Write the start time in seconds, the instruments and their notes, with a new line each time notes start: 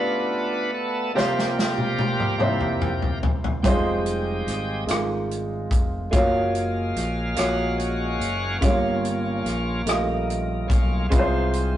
Already playing: upright piano B2 B3 F4 G4 D5, tonewheel organ A3 B3 D4 F4 B4
0.74 tonewheel organ A4
1.14 upright piano C3 A#3 F4 G4 C5, tonewheel organ F3 G3 A#3 F4 G4 A#4, snare
1.39 snare
1.59 snare
1.78 high tom
1.99 high tom
2.20 mid tom
2.38 upright piano C3 A#3 D#4 G4 C5, tonewheel organ G3 A#3 E4, mid tom
2.45 upright piano E4
2.61 mid tom
2.82 mid tom
3.02 floor tom
3.23 floor tom
3.44 floor tom
3.63 fingered electric bass F1, upright piano G3 D#4 F4 C5, tonewheel organ G#3 D#4 G4, kick, closed hi-hat
3.69 upright piano G#3
4.06 closed hi-hat
4.47 fingered electric bass G#1, cross-stick, closed hi-hat
4.87 fingered electric bass G#1, upright piano G#3 D#4 F4 A#4, closed hi-hat
4.91 cross-stick
5.31 closed hi-hat
5.71 fingered electric bass F1, kick, closed hi-hat
6.11 fingered electric bass F#1, tonewheel organ G#3 A#3 F5, upright piano A3 F4 F#4 C#5, kick, closed hi-hat
6.18 upright piano A#3
6.55 closed hi-hat
6.96 fingered electric bass A#1, cross-stick, closed hi-hat
7.35 fingered electric bass A#1, upright piano A#3 F4 F#4 C#5, tonewheel organ F#4, cross-stick, closed hi-hat
7.78 tonewheel organ A#3 C#4 F#4, closed hi-hat
8.20 fingered electric bass F#1, closed hi-hat
8.59 fingered electric bass G1, upright piano G2 G#3 F4 G4, tonewheel organ A#3 C#4 F4, kick, closed hi-hat
8.63 upright piano C#5
8.67 upright piano A#3
9.05 closed hi-hat
9.45 fingered electric bass A#1, cross-stick, closed hi-hat
9.86 fingered electric bass A#1, upright piano A3 F4 G4 D#5, cross-stick, closed hi-hat
9.93 upright piano A#3
10.30 closed hi-hat
10.68 fingered electric bass B1, tonewheel organ A#3 C#4 F4, kick, closed hi-hat
11.09 fingered electric bass C2, upright piano C3 G#3 C4 F4 B4, tonewheel organ G#3 C4 F4, kick, closed hi-hat
11.19 upright piano C5
11.53 closed hi-hat